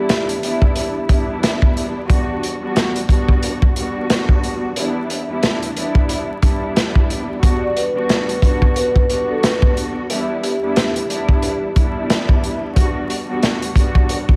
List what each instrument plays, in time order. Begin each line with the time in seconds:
Already playing: string section E2 G3 B3 D4 E4, vibraphone G4
0.09 snare, closed hi-hat
0.29 closed hi-hat
0.42 string section E2 G3 B3 D4 E4, closed hi-hat
0.62 kick
0.76 closed hi-hat
1.08 string section E2 G3 B3 D4 E4, kick, closed hi-hat
1.43 snare, closed hi-hat
1.62 kick
1.77 closed hi-hat
2.06 string section E2 G3 B3 D4 F#4, kick, closed hi-hat
2.43 closed hi-hat
2.60 string section E2 G3 B3 D4 F#4
2.76 snare, closed hi-hat
2.96 closed hi-hat
3.09 string section E2 G3 B3 D4 F#4, kick, closed hi-hat
3.28 kick
3.42 closed hi-hat
3.62 kick
3.76 string section E2 G3 B3 D4 F#4, closed hi-hat
4.10 snare, closed hi-hat
4.29 kick
4.43 closed hi-hat
4.76 string section E2 G3 B3 D4 E4, closed hi-hat
5.10 closed hi-hat
5.28 string section E2 G3 B3 D4 E4
5.43 snare, closed hi-hat
5.62 closed hi-hat
5.75 string section E2 G3 B3 D4 E4, closed hi-hat
5.95 kick
6.09 closed hi-hat
6.41 string section E2 G3 B3 D4 E4, kick, closed hi-hat
6.76 snare, closed hi-hat
6.95 kick
7.10 closed hi-hat
7.40 string section E2 G3 B3 D4 F#4, kick, closed hi-hat
7.62 vibraphone D5
7.76 vibraphone B4, closed hi-hat
7.94 string section E2 G3 B3 D4 F#4
8.09 snare, closed hi-hat
8.29 closed hi-hat
8.42 string section E2 G3 B3 D4 F#4, kick, closed hi-hat
8.62 kick
8.76 vibraphone B4, closed hi-hat
8.96 kick
9.09 string section E2 G3 B3 D4 F#4, closed hi-hat
9.30 vibraphone A4
9.43 vibraphone B4, snare, closed hi-hat
9.62 kick
9.77 closed hi-hat
10.09 string section E2 G3 B3 D4 E4, closed hi-hat
10.43 vibraphone G4, closed hi-hat
10.61 string section E2 G3 B3 D4 E4
10.76 snare, closed hi-hat
10.96 closed hi-hat
11.09 string section E2 G3 B3 D4 E4, closed hi-hat
11.29 kick
11.42 closed hi-hat
11.75 string section E2 G3 B3 D4 E4, kick, closed hi-hat
12.10 snare, closed hi-hat
12.29 kick
12.44 closed hi-hat
12.73 string section E2 G3 B3 D4 F#4, kick, closed hi-hat
13.10 closed hi-hat
13.27 string section E2 G3 B3 D4 F#4
13.43 snare, closed hi-hat
13.62 closed hi-hat
13.76 string section E2 G3 B3 D4 F#4, kick, closed hi-hat
13.95 kick
14.09 closed hi-hat
14.29 kick